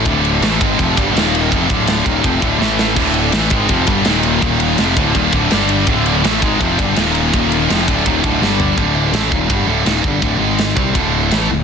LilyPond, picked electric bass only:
\new Staff \with { instrumentName = "Picked electric bass" } { \clef bass \time 4/4 \key d \minor \tempo 4 = 165 d,,4 a,,8 gis,,8 f,,8 g,,8 ees,,4 | f,,8 d,,4 ees,,8 f,,8 d,,8 a,,4 | d,,4 a,,8 gis,,8 f,,8 g,,8 ees,,4 | ees,,4 f,,8 d,,8 ees,,8 d,,8 g,,4 |
d,,4 a,,8 gis,,8 f,,8 g,,8 ees,,4 | ees,,4 f,,8 d,,8 ees,,8 d,,8 g,,4 | d,,4 a,,8 ees,,8 g,,8 d,,8 ees,,8 g,,8 | d,,8 gis,,4 c,8 d,,4 a,,8 d,,8 | }